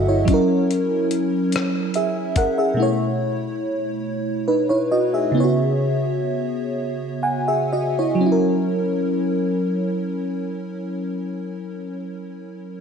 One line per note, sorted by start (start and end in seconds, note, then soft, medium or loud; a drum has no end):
0.00 0.24 G1 medium
0.00 0.22 F#3 medium
0.00 0.29 F#4 medium
0.00 0.29 G#4 medium
0.00 0.29 A4 soft
0.00 0.30 D#5 medium
0.00 0.29 E5 medium
0.00 0.29 F#5 medium
0.08 0.30 E4 soft
0.08 0.47 C#5 medium
0.25 2.72 F#3 medium
0.25 2.74 C#4 medium
0.25 kick loud
0.25 closed hi-hat medium
0.31 2.75 E4 medium
0.31 1.94 A#4 medium
0.71 closed hi-hat soft
1.11 closed hi-hat medium
1.52 cross-stick medium
1.52 closed hi-hat medium
1.94 2.35 G#4 soft
1.94 2.34 E5 medium
1.94 closed hi-hat soft
2.36 2.57 A#4 medium
2.36 2.56 F#5 medium
2.36 kick medium
2.36 closed hi-hat medium
2.58 2.97 G#4 soft
2.58 2.97 E5 medium
2.74 5.29 B2 medium
2.74 5.30 A3 medium
2.80 4.45 E4 medium
2.80 4.46 C#5 medium
4.48 4.68 D#4 soft
4.48 4.68 B4 medium
4.69 4.90 E4 soft
4.69 4.90 C#5 medium
4.92 5.12 F#4 soft
4.92 5.12 D#5 medium
5.14 5.56 G#4 soft
5.14 5.55 E5 soft
5.32 8.17 C#3 medium
5.32 8.18 B3 medium
5.37 5.43 E4 soft
5.37 7.20 C#5 medium
5.44 7.22 F#4 medium
7.23 7.46 F#5 soft
7.23 7.69 G#5 medium
7.48 7.71 G#4 soft
7.48 7.71 E5 medium
7.73 7.96 F#4 soft
7.73 7.96 D#5 medium
7.99 8.25 E4 soft
7.99 8.47 C#5 soft
8.15 11.77 F#3 medium
8.21 11.82 C#4 medium
8.26 11.88 E4 medium
8.32 11.93 A#4 medium